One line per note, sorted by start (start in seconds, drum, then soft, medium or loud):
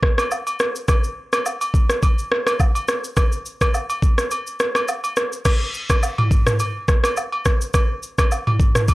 0.03 kick medium
0.03 cross-stick medium
0.18 cross-stick medium
0.18 high agogo medium
0.18 shaker medium
0.31 low woodblock medium
0.31 shaker medium
0.47 high agogo medium
0.47 shaker soft
0.59 cross-stick medium
0.59 shaker medium
0.76 shaker soft
0.88 kick loud
0.88 cross-stick medium
0.88 high agogo medium
0.88 shaker medium
1.04 shaker soft
1.33 cross-stick medium
1.33 high agogo medium
1.33 shaker medium
1.46 low woodblock medium
1.46 shaker medium
1.61 high agogo medium
1.61 shaker medium
1.74 kick loud
1.74 shaker medium
1.90 cross-stick medium
1.90 shaker medium
2.03 kick loud
2.03 high agogo medium
2.03 shaker medium
2.18 shaker medium
2.32 cross-stick medium
2.47 cross-stick medium
2.47 high agogo medium
2.47 shaker medium
2.60 kick medium
2.60 low woodblock medium
2.60 shaker medium
2.75 high agogo medium
2.75 shaker soft
2.88 cross-stick medium
2.88 shaker medium
3.04 shaker medium
3.17 kick loud
3.17 cross-stick medium
3.17 high agogo medium
3.17 shaker medium
3.32 shaker medium
3.46 shaker soft
3.61 kick medium
3.61 cross-stick medium
3.61 high agogo medium
3.61 shaker medium
3.74 low woodblock medium
3.74 shaker medium
3.90 high agogo medium
3.90 shaker soft
4.02 kick loud
4.02 shaker soft
4.18 cross-stick medium
4.18 shaker medium
4.31 high agogo medium
4.31 shaker medium
4.47 shaker medium
4.60 cross-stick medium
4.60 shaker soft
4.75 cross-stick medium
4.75 high agogo medium
4.75 shaker soft
4.88 low woodblock medium
4.88 shaker medium
5.04 high agogo medium
5.04 shaker soft
5.17 cross-stick medium
5.17 shaker medium
5.33 shaker medium
5.45 kick loud
5.45 cross-stick medium
5.45 crash medium
5.45 high agogo medium
5.45 shaker medium
5.74 shaker soft
5.90 kick medium
5.90 cross-stick medium
5.90 high agogo medium
5.90 shaker medium
6.03 low woodblock medium
6.03 shaker medium
6.18 mid tom loud
6.18 high agogo medium
6.31 kick loud
6.31 shaker medium
6.47 cross-stick medium
6.47 mid tom medium
6.47 shaker medium
6.60 high agogo medium
6.60 shaker medium
6.88 kick loud
6.88 cross-stick medium
6.88 shaker soft
7.04 cross-stick medium
7.04 high agogo medium
7.04 shaker medium
7.17 low woodblock medium
7.17 shaker medium
7.32 high agogo medium
7.45 kick medium
7.45 cross-stick medium
7.45 shaker medium
7.61 shaker medium
7.74 kick loud
7.74 cross-stick medium
7.74 high agogo medium
7.74 shaker medium
8.03 shaker soft
8.18 kick medium
8.18 cross-stick medium
8.18 high agogo medium
8.18 shaker medium
8.32 low woodblock medium
8.32 shaker medium
8.47 mid tom loud
8.47 high agogo medium
8.60 kick loud
8.60 shaker soft
8.75 cross-stick medium
8.75 mid tom medium
8.75 shaker medium
8.88 kick loud
8.88 high agogo medium
8.88 shaker medium